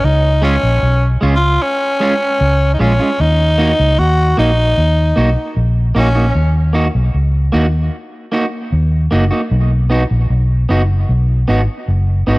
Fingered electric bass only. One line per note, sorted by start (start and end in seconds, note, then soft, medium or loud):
0.04 0.56 C#2 loud
0.63 0.80 A#1 medium
0.83 1.17 B1 medium
1.22 1.57 C#2 medium
2.41 2.75 C#2 medium
2.80 2.98 A#1 medium
3.20 3.72 D#2 loud
3.80 3.96 C#2 medium
3.99 4.33 D#2 loud
4.38 4.73 A#1 medium
4.78 5.12 D#2 loud
5.17 5.35 B1 medium
5.57 5.91 A#1 medium
5.96 6.31 A#1 loud
6.35 6.88 D#2 loud
6.95 7.12 B1 medium
7.14 7.49 C#2 medium
7.54 7.88 D#2 medium
8.72 9.07 D#2 medium
9.12 9.29 F#1 medium
9.51 10.03 B1 loud
10.11 10.28 A#1 medium
10.30 10.65 B1 loud
10.70 11.04 F#1 medium
11.09 11.44 B1 loud
11.48 11.66 G#1 medium
11.88 12.23 F#1 medium
12.28 12.38 G#1 medium